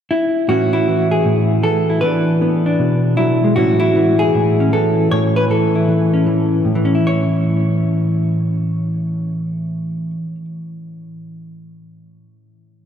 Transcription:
0.11 E4
0.48 A2 E3 C#4 E4 F#4
0.73 E4
0.88 E3
1.11 G#4
1.25 A2
1.63 E3 A4
1.90 E4
2.01 E3 B3 D4 B4
2.42 B3
2.66 D4
2.79 B2
3.17 F#3 E4
3.44 G#3
3.56 A2 E3 C#4 E4 F#4
3.80 E4
3.96 E3
4.19 G#4
4.34 A2 E4
4.60 C#4
4.73 E3 A4
5.11 A2 C#5
5.36 B4
5.50 E3 A4
5.75 E4
5.88 E3
6.14 C#4
6.26 E3
6.65 A2
6.75 E3
6.85 C#4
6.95 E4
7.07 C#5

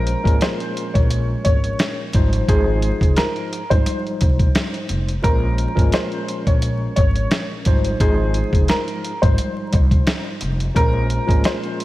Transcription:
Already playing: A#1 A#2 F3 G#3 C#4 A#4 C5
0.07 closed hi-hat
0.23 G#1 A#2 F3 G#3 C#4 A#4, kick
0.27 closed hi-hat
0.41 C5, snare, closed hi-hat
0.60 closed hi-hat
0.77 closed hi-hat
0.94 A#1 C#5, kick, closed hi-hat
1.11 closed hi-hat
1.45 G#1 C#5, kick, closed hi-hat
1.64 closed hi-hat
1.79 snare, closed hi-hat
2.13 G#1 G#2 F3 G3 D#4 C5, kick, closed hi-hat
2.33 closed hi-hat
2.48 G#1 G#2 F3 G#3 D#4 G#4 C5, kick, closed hi-hat
2.82 closed hi-hat
3.01 F1, kick, closed hi-hat
3.17 A#4, snare, closed hi-hat
3.36 closed hi-hat
3.53 closed hi-hat
3.70 G#1 G#2 F3 G3 D#4 C5, kick, closed hi-hat
3.86 closed hi-hat
4.07 closed hi-hat
4.21 C2, kick, closed hi-hat
4.39 kick, closed hi-hat
4.55 snare, closed hi-hat
4.74 closed hi-hat
4.89 F1, closed hi-hat
5.09 closed hi-hat
5.22 A#1 A#2 F3 G#3 C#4 A#4 C5, kick, closed hi-hat
5.58 closed hi-hat
5.75 G#1 A#2 F3 G#3 C#4 A#4, kick
5.79 closed hi-hat
5.92 C5, snare, closed hi-hat
6.12 closed hi-hat
6.28 closed hi-hat
6.47 A#1 C#5, kick, closed hi-hat
6.62 closed hi-hat
6.96 G#1 C#5, kick, closed hi-hat
7.16 closed hi-hat
7.31 snare, closed hi-hat
7.65 G#1 G#2 F3 G3 D#4 C5, kick, closed hi-hat
7.84 closed hi-hat
8.00 G#1 G#2 F3 G#3 D#4 G#4 C5, kick, closed hi-hat
8.34 closed hi-hat
8.53 F1, kick, closed hi-hat
8.68 A#4, snare, closed hi-hat
8.88 closed hi-hat
9.04 closed hi-hat
9.22 G#1 G#2 F3 G3 D#4 C5, kick, closed hi-hat
9.38 closed hi-hat
9.73 C2, kick, closed hi-hat
9.91 kick, closed hi-hat
10.07 snare, closed hi-hat
10.41 F1, closed hi-hat
10.60 closed hi-hat
10.74 A#1 A#2 F3 G#3 C#4 A#4 C5, kick, closed hi-hat
11.10 closed hi-hat
11.26 G#1 A#2 F3 G#3 C#4 A#4, kick
11.30 closed hi-hat
11.44 C5, snare, closed hi-hat
11.64 closed hi-hat
11.80 closed hi-hat

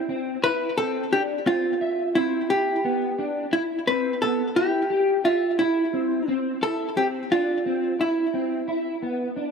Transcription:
Already playing: E4
0.09 C4
0.44 E4 B4
0.78 C4 A4
1.12 D4 G4
1.47 C4 F4
1.81 E5
2.15 C4 E4
2.50 E4 G4
2.84 B3
3.19 D4
3.53 E4
3.87 C4 B4
4.22 B3 A4
4.56 E4 G4
4.90 G4
5.24 F4 E5
5.59 E4
5.93 C4
6.28 C4
6.62 E4 A4
6.97 C4 G4
7.31 D4 F4
7.66 C4
7.99 E4
8.34 C4
8.68 E4
9.02 B3
9.36 D4

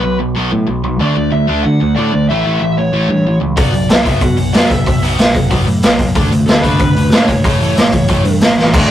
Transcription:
Already playing: B4
0.03 B1 B2 F#3
0.19 B2 F#3
0.35 B1 B2 F#3 B3
0.52 A2 B2 F#3
0.67 B1 B2 F#3
0.84 B1 B2 F#3
0.99 D2 D3 A3 D4 D5
1.16 D2 D3 A3
1.31 D2 D3 A3 E5
1.47 D2 D3 A3 D4
1.64 D3 A3 F#5
1.80 D2 D3 A3
1.95 A2 D3 A3 D4 D5
2.13 D2 D3 A3
2.29 A1 A2 E3 A3 E5
2.46 A1 A2 E3 A3
2.61 A1 A2 E3 E5
2.78 A2 E3 C#5
2.92 A1 A2 E3 A3
3.09 G2 A2 E3
3.25 A1 A2 E3
3.40 C#2 A2 E3
3.56 B1 B2 F#3 B3 D5, kick, open hi-hat
3.73 B1 B2 F#3, open hi-hat
3.89 B1 B2 F#3 E5, snare, open hi-hat
4.04 B1 B2 F#3 B3, kick, open hi-hat
4.21 B2 F#3 F#5, kick, open hi-hat
4.37 B1 B2 F#3, open hi-hat
4.53 F#2 B2 F#3 B3 D5, snare, open hi-hat
4.68 B1 B2 F#3 E5, kick, open hi-hat
4.86 B1 B2 F#3, kick, open hi-hat
5.02 B1 B2 F#3 B3, open hi-hat
5.09 F#5
5.17 B1 B2 F#3 F#5, snare, open hi-hat
5.35 B2 F#3, kick, open hi-hat
5.50 B1 B2 F#3 B3, kick, open hi-hat
5.67 A2 B2 F#3, open hi-hat
5.82 B1 B2 F#3, snare, open hi-hat
5.98 B1 B2 F#3, kick, open hi-hat
6.15 D2 D3 A3 D4, kick, open hi-hat
6.31 D2 D3 A3, open hi-hat
6.46 D2 D3 A3 A4, snare, open hi-hat
6.60 D2 D3 A3 B4, kick, open hi-hat
6.65 D4
6.79 D3 A3, kick, open hi-hat
6.91 D2 B4
6.96 D3 A3, open hi-hat
7.11 A2 D3 A3 D4, snare, open hi-hat
7.23 C#5
7.28 G1 D3 A3, kick, open hi-hat
7.44 A1 A2 E3 A3, kick, open hi-hat
7.60 A1 A2 E3 A3, open hi-hat
7.76 A1 A2 E3, snare, open hi-hat
7.92 A2 E3, kick, open hi-hat
8.08 A1 A2 E3 A3, kick, open hi-hat
8.24 G2 A2 E3, open hi-hat
8.41 A1 A2 E3, snare, open hi-hat
8.57 A1 A2 E3, snare
8.74 D2 D3 A3 D4, kick, crash
8.88 D5

